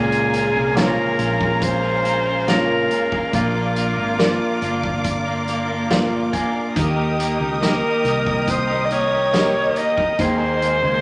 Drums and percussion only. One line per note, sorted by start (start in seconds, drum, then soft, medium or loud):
0.12 closed hi-hat soft
0.33 closed hi-hat medium
0.77 snare loud
0.77 closed hi-hat medium
1.19 closed hi-hat medium
1.41 kick medium
1.62 kick medium
1.62 closed hi-hat medium
2.05 closed hi-hat medium
2.48 snare loud
2.48 closed hi-hat medium
2.91 closed hi-hat medium
3.12 kick medium
3.33 kick loud
3.33 closed hi-hat medium
3.76 closed hi-hat medium
4.19 snare loud
4.19 closed hi-hat medium
4.62 closed hi-hat medium
4.84 kick medium
5.04 kick medium
5.04 closed hi-hat medium
5.48 closed hi-hat medium
5.90 snare loud
5.90 closed hi-hat medium
6.33 kick medium
6.33 closed hi-hat medium
6.76 kick loud
6.76 closed hi-hat medium
7.20 closed hi-hat medium
7.63 snare medium
7.63 closed hi-hat medium
7.63 tambourine medium
8.05 closed hi-hat medium
8.26 kick medium
8.48 kick medium
8.48 closed hi-hat medium
8.91 closed hi-hat medium
9.33 snare loud
9.33 closed hi-hat medium
9.33 tambourine medium
9.76 closed hi-hat medium
9.98 kick medium
10.19 kick loud
10.19 closed hi-hat medium
10.62 closed hi-hat medium